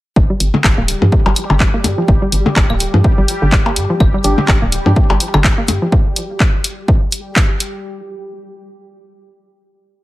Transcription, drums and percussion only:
0.16 kick
0.40 open hi-hat
0.54 percussion blips
0.64 kick, clap, percussion blips
0.88 open hi-hat
1.02 percussion blips
1.12 kick
1.26 percussion blips
1.36 open hi-hat, claves
1.50 percussion blips
1.60 kick, clap
1.84 open hi-hat, percussion blips
2.08 kick
2.32 open hi-hat
2.46 percussion blips
2.56 kick, clap, percussion blips
2.70 claves
2.80 open hi-hat
2.94 percussion blips
3.04 kick
3.28 open hi-hat
3.52 kick, clap
3.66 percussion blips
3.76 open hi-hat
4.00 kick, claves
4.24 open hi-hat
4.38 percussion blips
4.48 kick, clap, percussion blips
4.72 open hi-hat
4.86 percussion blips
4.96 kick
5.10 percussion blips
5.20 open hi-hat
5.34 claves, percussion blips
5.44 kick, clap
5.68 open hi-hat, percussion blips
5.92 kick
6.16 open hi-hat
6.40 kick, clap
6.64 open hi-hat
6.88 kick
7.12 open hi-hat
7.36 kick, clap
7.60 open hi-hat

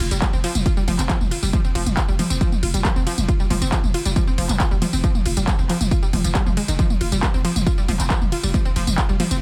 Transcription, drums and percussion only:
0.00 open hi-hat, ride
0.11 closed hi-hat, tambourine
0.22 kick, clap, closed hi-hat, mid tom, tambourine
0.33 tambourine
0.44 open hi-hat, ride
0.55 closed hi-hat, mid tom, tambourine
0.66 kick, closed hi-hat, tambourine
0.77 tambourine
0.88 open hi-hat, mid tom, ride
0.99 clap, closed hi-hat, tambourine
1.10 kick, clap, closed hi-hat, tambourine
1.21 mid tom, tambourine
1.31 open hi-hat, ride
1.43 open hi-hat, tambourine
1.53 kick, closed hi-hat, mid tom
1.65 tambourine
1.75 open hi-hat, ride
1.86 closed hi-hat, mid tom, tambourine
1.97 kick, clap, closed hi-hat, tambourine
2.08 tambourine
2.19 open hi-hat, mid tom, ride
2.30 closed hi-hat, tambourine
2.41 kick, closed hi-hat, tambourine
2.52 mid tom, tambourine
2.63 open hi-hat, ride
2.74 closed hi-hat, tambourine
2.85 kick, clap, closed hi-hat, mid tom, tambourine
2.96 tambourine
3.07 open hi-hat, ride
3.18 closed hi-hat, mid tom, tambourine
3.29 kick, closed hi-hat, tambourine
3.40 tambourine
3.50 open hi-hat, mid tom, ride
3.62 closed hi-hat, tambourine
3.72 kick, clap, closed hi-hat, tambourine
3.84 mid tom, tambourine
3.94 open hi-hat, ride
4.05 closed hi-hat, tambourine
4.16 kick, closed hi-hat, mid tom, tambourine
4.27 tambourine
4.38 open hi-hat, ride
4.49 clap, closed hi-hat, mid tom, tambourine
4.60 kick, clap, closed hi-hat, tambourine
4.71 tambourine
4.82 open hi-hat, mid tom, ride
4.93 open hi-hat, tambourine
5.04 kick, closed hi-hat, tambourine
5.15 mid tom, tambourine
5.26 open hi-hat, ride
5.37 closed hi-hat, tambourine
5.47 kick, clap, closed hi-hat, mid tom, tambourine
5.59 tambourine
5.69 clap, open hi-hat, ride
5.81 closed hi-hat, mid tom, tambourine
5.91 kick, closed hi-hat, tambourine
6.03 tambourine
6.13 open hi-hat, mid tom, ride
6.24 closed hi-hat, tambourine
6.35 kick, clap, closed hi-hat, tambourine
6.46 mid tom, tambourine
6.57 open hi-hat, ride
6.68 closed hi-hat, tambourine
6.79 kick, closed hi-hat, tambourine
6.90 mid tom, tambourine
7.01 open hi-hat, ride
7.12 closed hi-hat, tambourine
7.23 kick, clap, closed hi-hat, mid tom, tambourine
7.34 tambourine
7.45 open hi-hat, ride
7.56 closed hi-hat, mid tom, tambourine
7.67 kick, closed hi-hat, tambourine
7.78 tambourine
7.88 open hi-hat, mid tom, ride
8.00 clap, closed hi-hat, tambourine
8.10 kick, clap, closed hi-hat
8.22 mid tom, tambourine
8.32 open hi-hat, ride
8.43 open hi-hat, tambourine
8.54 kick, closed hi-hat, mid tom, tambourine
8.65 tambourine
8.76 open hi-hat, ride
8.87 closed hi-hat, mid tom, tambourine
8.98 kick, clap, closed hi-hat, tambourine
9.09 tambourine
9.20 open hi-hat, mid tom, ride
9.31 closed hi-hat, tambourine

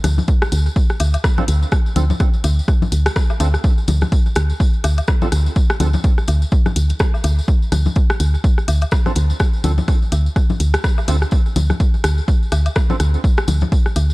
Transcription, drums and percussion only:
0.04 cross-stick, closed hi-hat, tambourine, low conga
0.18 tambourine, low conga
0.28 kick, closed hi-hat, tambourine
0.42 cross-stick, tambourine
0.52 closed hi-hat, tambourine
0.66 tambourine
0.76 kick, tambourine
0.89 cross-stick, tambourine
1.00 closed hi-hat, tambourine, low woodblock
1.14 closed hi-hat, tambourine, low woodblock
1.24 kick, cross-stick, tambourine
1.38 cross-stick, tambourine, low conga
1.48 closed hi-hat, tambourine
1.62 tambourine
1.72 kick, cross-stick, tambourine
1.86 tambourine
1.96 closed hi-hat, tambourine, low conga
2.10 tambourine, low conga
2.20 kick, cross-stick, closed hi-hat, tambourine
2.33 tambourine
2.44 closed hi-hat, tambourine, low woodblock
2.59 tambourine
2.68 kick, cross-stick, tambourine
2.82 tambourine, low conga
2.92 closed hi-hat, tambourine
3.06 cross-stick, closed hi-hat, tambourine
3.16 kick, cross-stick, tambourine
3.30 tambourine, low woodblock
3.40 closed hi-hat, tambourine, low woodblock
3.54 cross-stick, tambourine
3.64 kick, tambourine
3.78 tambourine
3.88 closed hi-hat, tambourine, low conga
4.01 cross-stick, tambourine, low conga
4.12 kick, closed hi-hat, tambourine
4.26 tambourine
4.35 cross-stick, closed hi-hat, tambourine
4.50 tambourine
4.60 kick, tambourine
4.73 tambourine
4.84 cross-stick, closed hi-hat, tambourine, low woodblock
4.98 closed hi-hat, tambourine, low woodblock
5.07 kick, cross-stick, tambourine
5.22 tambourine, low conga
5.32 cross-stick, closed hi-hat, tambourine
5.46 tambourine
5.56 kick, tambourine
5.70 cross-stick, tambourine
5.80 closed hi-hat, tambourine, low conga
5.93 tambourine, low conga
6.04 kick, closed hi-hat, tambourine
6.18 cross-stick, tambourine
6.28 closed hi-hat, tambourine, low woodblock
6.42 tambourine
6.52 kick, tambourine
6.66 cross-stick, tambourine, low conga
6.76 closed hi-hat, tambourine
6.89 closed hi-hat, tambourine
6.99 kick, cross-stick, tambourine
7.14 tambourine, low woodblock
7.24 closed hi-hat, tambourine, low woodblock
7.39 tambourine
7.48 kick, tambourine
7.62 tambourine
7.72 cross-stick, closed hi-hat, tambourine, low conga
7.86 tambourine, low conga
7.96 kick, closed hi-hat, tambourine
8.10 cross-stick, tambourine
8.20 closed hi-hat, tambourine
8.35 tambourine
8.44 kick, tambourine
8.58 cross-stick, tambourine
8.68 closed hi-hat, tambourine, low woodblock
8.81 closed hi-hat, tambourine, low woodblock
8.91 kick, cross-stick, tambourine
9.06 cross-stick, tambourine, low conga
9.16 closed hi-hat, tambourine
9.30 tambourine
9.40 kick, cross-stick, tambourine
9.53 tambourine
9.64 closed hi-hat, tambourine, low conga
9.78 tambourine, low conga
9.88 kick, cross-stick, closed hi-hat, tambourine
10.02 tambourine
10.12 closed hi-hat, tambourine, low woodblock
10.26 tambourine
10.36 kick, cross-stick, tambourine
10.50 tambourine, low conga
10.60 closed hi-hat, tambourine
10.74 cross-stick, closed hi-hat, tambourine
10.84 kick, cross-stick, tambourine
10.98 tambourine, low woodblock
11.08 closed hi-hat, tambourine, low woodblock
11.22 cross-stick, tambourine
11.31 kick, tambourine
11.46 tambourine
11.56 closed hi-hat, tambourine, low conga
11.70 cross-stick, tambourine, low conga
11.80 kick, closed hi-hat, tambourine
11.94 tambourine
12.04 cross-stick, closed hi-hat, tambourine
12.18 tambourine
12.28 kick, tambourine
12.43 tambourine
12.52 cross-stick, closed hi-hat, tambourine, low woodblock
12.66 closed hi-hat, tambourine, low woodblock
12.76 kick, cross-stick, tambourine
12.90 tambourine, low conga
13.00 cross-stick, closed hi-hat, tambourine
13.14 tambourine
13.24 kick, tambourine
13.37 cross-stick, tambourine
13.48 closed hi-hat, tambourine, low conga
13.61 tambourine, low conga
13.72 kick, closed hi-hat, tambourine
13.86 cross-stick, tambourine
13.96 closed hi-hat, tambourine, low woodblock
14.10 tambourine

